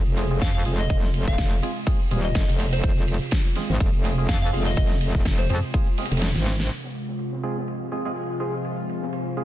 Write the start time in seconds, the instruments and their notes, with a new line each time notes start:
Already playing: analog synth pad C3 G#3 F4
0.07 wobble bass F1, closed hi-hat
0.17 synth stab G#3 C4 F4 G#4, open hi-hat, ride
0.31 synth stab G#3 C4 F4 G#4, closed hi-hat
0.41 wobble bass F2, synth bell F5, kick, snare, closed hi-hat, open hi-hat
0.55 synth bell F5, closed hi-hat
0.65 wobble bass F1, synth stab G#3 C4 F4 G#4, open hi-hat, ride
0.79 synth bell D#5
0.90 wobble bass F1, synth bell D#5, kick, closed hi-hat, ride
1.03 snare, closed hi-hat
1.14 open hi-hat, ride
1.28 wobble bass F1, synth bell F5, kick, snare
1.38 wobble bass F1, kick, snare, closed hi-hat, ride
1.52 closed hi-hat
1.62 synth stab G#3 C4 F4 G#4, open hi-hat, ride
1.76 closed hi-hat
1.87 synth stab G#3 C4 F4 G#4, kick, closed hi-hat, ride
2.00 closed hi-hat
2.11 wobble bass D#1, synth stab G#3 C4 F4 G#4, open hi-hat, ride
2.24 synth bell D#5, closed hi-hat
2.35 wobble bass F1, kick, snare, closed hi-hat, ride
2.48 wobble bass F1, snare, closed hi-hat, ride
2.59 snare, open hi-hat, ride
2.73 synth bell C5, snare, closed hi-hat, ride
2.84 wobble bass F1, kick, closed hi-hat, ride
2.96 snare, closed hi-hat
3.08 open hi-hat, ride
3.21 snare, closed hi-hat
3.31 kick, snare, closed hi-hat, ride
3.45 snare, closed hi-hat
3.55 synth stab G#3 C4 F4 G#4, snare, open hi-hat, ride
3.69 wobble bass G#1, snare
3.80 wobble bass F1, kick, closed hi-hat, ride
3.94 wobble bass F1, closed hi-hat
4.05 synth stab G#3 C4 F4 G#4, open hi-hat, ride
4.18 synth stab G#3 C4 F4 G#4, closed hi-hat
4.29 wobble bass F2, synth bell F5, kick, snare, closed hi-hat, open hi-hat
4.42 synth bell F5, closed hi-hat
4.53 wobble bass F1, synth stab G#3 C4 F4 G#4, snare, open hi-hat, ride
4.66 synth bell D#5, snare, ride
4.77 wobble bass F1, synth bell D#5, kick, snare, closed hi-hat, ride
4.91 snare, closed hi-hat
5.01 open hi-hat, ride
5.14 wobble bass F1, kick, snare
5.25 wobble bass F1, kick, snare, closed hi-hat, ride
5.39 synth bell C5, closed hi-hat
5.49 wobble bass F2, synth stab G#3 C4 F4 G#4, synth bell C5, snare, open hi-hat, ride
5.63 closed hi-hat
5.74 synth stab G#3 C4 F4 G#4, kick, closed hi-hat, ride
5.87 closed hi-hat
5.98 synth stab G#3 C4 F4 G#4, snare, open hi-hat, ride
6.05 snare, ride
6.11 wobble bass F1, snare, closed hi-hat, ride
6.17 snare, ride
6.22 snare, closed hi-hat, ride
6.35 wobble bass G#1, snare, closed hi-hat, ride
6.46 snare, open hi-hat, ride
6.60 snare, closed hi-hat
6.71 analog synth pad C3 G#3 F4, ambient pad F4, ride
6.84 ambient pad C5, snare
6.95 ride
7.08 snare
7.15 ambient pad F5
7.19 ride
7.33 snare
7.43 synth stab G#3 C4 F4 G#4, ride
7.47 ambient pad G#5
7.58 snare
7.68 ride
7.92 synth stab G#3 C4 F4 G#4, ride
8.05 synth stab G#3 C4 F4 G#4
8.15 open hi-hat
8.40 synth stab G#3 C4 F4 G#4, ride
8.65 ride
8.89 ride
9.02 snare
9.12 ride
9.37 synth stab G#3 C4 F4 G#4, snare, ride